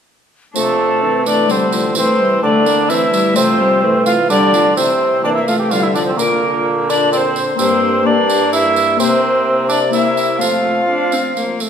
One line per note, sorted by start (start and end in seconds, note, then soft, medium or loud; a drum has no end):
0.53 1.99 C3 soft
0.53 0.99 F3 medium
0.53 1.45 A3 soft
0.53 1.22 A3 medium
0.53 1.46 C4 soft
0.53 1.04 D4 soft
0.53 1.23 A4 medium
0.53 tambourine medium
1.02 1.52 E3 medium
1.02 1.95 E3 soft
1.02 1.27 C4 medium
1.26 1.50 A3 medium
1.26 1.49 D4 medium
1.26 1.53 D5 medium
1.26 tambourine soft
1.46 1.96 D3 medium
1.46 1.98 D3 soft
1.46 1.74 G3 medium
1.46 1.91 A3 soft
1.46 1.93 C4 soft
1.46 tambourine soft
1.50 1.96 C4 medium
1.50 1.96 C5 medium
1.72 1.96 F3 medium
1.72 tambourine medium
1.92 2.85 A3 soft
1.92 2.86 C4 soft
1.92 tambourine medium
1.96 2.89 E3 soft
1.96 2.42 E3 medium
1.96 2.21 A3 soft
1.96 2.42 C4 medium
1.96 2.42 C5 medium
2.19 2.42 G3 medium
2.43 2.89 D3 medium
2.43 3.38 D3 medium
2.43 2.67 A3 medium
2.43 2.91 D4 medium
2.43 2.91 D5 medium
2.66 2.89 A#3 medium
2.66 tambourine soft
2.86 3.38 E3 soft
2.86 3.35 E3 medium
2.86 3.31 A3 soft
2.86 3.33 C4 soft
2.86 3.12 C4 medium
2.86 3.35 E4 medium
2.86 3.38 E5 medium
2.86 tambourine medium
3.13 3.37 G3 medium
3.13 tambourine soft
3.33 3.82 F3 medium
3.33 4.77 A3 soft
3.33 3.61 A3 medium
3.33 4.74 C4 soft
3.33 4.05 C4 medium
3.33 4.05 C5 loud
3.33 tambourine medium
3.37 4.77 C3 soft
3.60 3.84 G3 medium
3.83 4.29 E3 medium
3.83 4.80 E3 soft
3.83 4.05 A3 medium
4.06 4.14 A3 medium
4.06 4.29 F4 medium
4.06 4.12 F5 medium
4.06 tambourine soft
4.29 4.76 D3 medium
4.29 4.79 D3 soft
4.29 4.55 G3 medium
4.29 4.76 D4 medium
4.29 4.79 D5 medium
4.29 tambourine medium
4.53 4.76 F3 medium
4.53 tambourine soft
4.75 5.24 C3 medium
4.75 6.21 C3 soft
4.75 5.18 E3 medium
4.75 6.20 C4 soft
4.75 5.23 C4 medium
4.75 6.20 E4 soft
4.75 5.24 C5 medium
4.75 tambourine medium
5.24 6.21 E3 soft
5.24 5.73 E3 medium
5.24 5.49 A#3 medium
5.24 5.34 D4 medium
5.24 5.30 D5 medium
5.35 5.40 E4 medium
5.35 5.48 E5 medium
5.47 5.73 A3 medium
5.47 5.58 F4 medium
5.47 5.54 F5 medium
5.47 tambourine soft
5.59 5.73 G4 medium
5.59 5.71 G5 medium
5.71 6.18 D3 medium
5.71 6.21 D3 soft
5.71 5.97 G3 medium
5.71 5.82 F4 medium
5.71 5.86 F5 medium
5.71 tambourine soft
5.82 5.88 E4 medium
5.82 5.94 E5 medium
5.95 6.18 F3 medium
5.95 6.00 D4 medium
5.95 6.05 D5 medium
5.95 tambourine soft
6.06 6.19 C4 medium
6.06 6.11 C5 medium
6.16 7.43 A#2 medium
6.16 7.62 A#2 soft
6.16 7.56 D3 medium
6.16 7.54 A#3 soft
6.16 6.91 A#3 medium
6.16 7.56 D4 soft
6.16 7.61 F4 soft
6.16 6.67 A#4 medium
6.16 tambourine medium
6.89 7.12 D4 medium
6.89 7.12 D5 medium
6.89 tambourine soft
7.12 7.45 C4 medium
7.12 7.19 D5 medium
7.12 tambourine soft
7.18 7.59 C5 medium
7.36 tambourine soft
7.55 8.01 A#3 soft
7.55 8.05 C4 medium
7.55 8.02 D4 soft
7.55 8.03 G4 soft
7.55 tambourine medium
7.60 9.01 G2 soft
7.60 8.97 G2 medium
7.60 8.06 A#3 medium
7.60 8.08 C5 medium
8.02 8.95 A#3 soft
8.02 9.00 D4 soft
8.02 8.52 D4 medium
8.02 8.98 G4 soft
8.07 8.98 A#3 medium
8.07 8.53 D5 medium
8.30 tambourine medium
8.53 8.98 E4 medium
8.53 8.99 E5 loud
8.53 tambourine medium
8.76 tambourine soft
8.96 10.38 C3 medium
8.96 9.88 A#3 soft
8.96 9.91 A#3 medium
8.96 9.68 C4 medium
8.96 9.89 E4 soft
8.96 9.91 G4 soft
8.96 tambourine medium
9.00 10.43 C3 soft
9.00 9.69 C5 medium
9.69 9.80 D4 medium
9.69 9.93 D5 medium
9.69 tambourine soft
9.90 10.41 A#3 soft
9.90 10.41 E4 soft
9.90 10.40 E4 medium
9.90 10.42 G4 soft
9.90 tambourine soft
9.94 10.43 A#3 medium
9.94 10.43 E5 medium
10.17 tambourine soft
10.38 11.57 F3 medium
10.38 11.70 F3 soft
10.38 11.70 A3 soft
10.38 10.84 A3 soft
10.38 11.70 C4 soft
10.38 11.59 F4 medium
10.38 11.70 F4 soft
10.38 11.60 F5 medium
10.38 tambourine medium
10.89 11.15 D4 medium
11.12 11.36 C4 medium
11.12 tambourine soft
11.37 11.62 A#3 medium
11.37 tambourine soft
11.60 11.70 A3 soft
11.60 tambourine soft